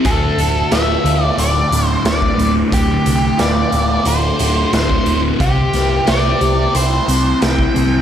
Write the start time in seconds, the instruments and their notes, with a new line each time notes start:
0.04 picked electric bass D1, distorted electric guitar D2, lead electric guitar A4, kick, closed hi-hat
0.38 picked electric bass D1, closed hi-hat
0.71 picked electric bass D1, distorted electric guitar F4, lead electric guitar E5, snare, closed hi-hat
1.04 picked electric bass D2, distorted electric guitar A3, closed hi-hat
1.24 lead electric guitar D5
1.38 picked electric bass D1, distorted electric guitar D3, lead electric guitar D5, closed hi-hat
1.71 picked electric bass D1, distorted electric guitar A2, closed hi-hat
1.86 lead electric guitar C5
2.05 picked electric bass D1, distorted electric guitar D3, lead electric guitar D5, snare, closed hi-hat
2.22 kick
2.37 picked electric bass D1, distorted electric guitar A2, closed hi-hat
2.71 picked electric bass D1, distorted electric guitar D2, lead electric guitar G4, kick, closed hi-hat
3.06 picked electric bass C2, closed hi-hat
3.37 picked electric bass D1, distorted electric guitar F4, lead electric guitar D5, snare, closed hi-hat
3.71 picked electric bass D1, distorted electric guitar A3, closed hi-hat
4.05 picked electric bass D1, distorted electric guitar D3, lead electric guitar C5, closed hi-hat
4.39 picked electric bass D1, distorted electric guitar A2, closed hi-hat
4.72 picked electric bass D1, distorted electric guitar D3, lead electric guitar C5, snare, closed hi-hat
4.90 kick
5.06 picked electric bass D1, distorted electric guitar A2, closed hi-hat
5.40 picked electric bass C2, distorted electric guitar C3, lead electric guitar G4, kick, closed hi-hat
5.73 picked electric bass C2, snare, closed hi-hat
6.07 picked electric bass C2, distorted electric guitar C5, lead electric guitar D5, snare, closed hi-hat
6.41 picked electric bass C2, distorted electric guitar G4, closed hi-hat
6.74 picked electric bass C2, distorted electric guitar E4, lead electric guitar C5, closed hi-hat
7.08 picked electric bass C2, distorted electric guitar C4, closed hi-hat
7.41 picked electric bass C2, distorted electric guitar E4, lead electric guitar G5, snare, closed hi-hat
7.59 kick
7.74 picked electric bass C2, distorted electric guitar C4, closed hi-hat